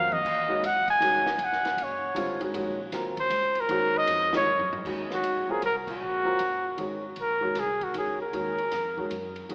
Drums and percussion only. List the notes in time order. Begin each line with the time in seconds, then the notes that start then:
0.00 mid tom
0.12 mid tom
0.25 kick, crash
0.64 hi-hat pedal, ride
0.88 kick, ride
1.02 hi-hat pedal, ride
1.26 snare
1.39 ride
1.52 snare
1.65 snare, ride
1.78 ride
2.16 hi-hat pedal, ride
2.41 ride
2.54 ride
2.92 snare, hi-hat pedal, ride
3.17 kick, ride
3.30 hi-hat pedal, ride
3.55 ride
3.69 ride
4.07 hi-hat pedal, ride
4.33 snare
4.47 floor tom
4.60 floor tom
4.73 floor tom
4.85 kick, crash
5.11 snare
5.24 hi-hat pedal, ride
5.62 hi-hat pedal, ride
5.87 kick, crash
6.39 hi-hat pedal, ride
6.78 ride
7.16 ride
7.55 snare, hi-hat pedal, ride
7.81 kick, ride
7.94 hi-hat pedal, ride
8.33 ride
8.58 ride
8.72 snare, hi-hat pedal, ride
8.98 kick
9.11 hi-hat pedal, ride
9.36 ride
9.49 ride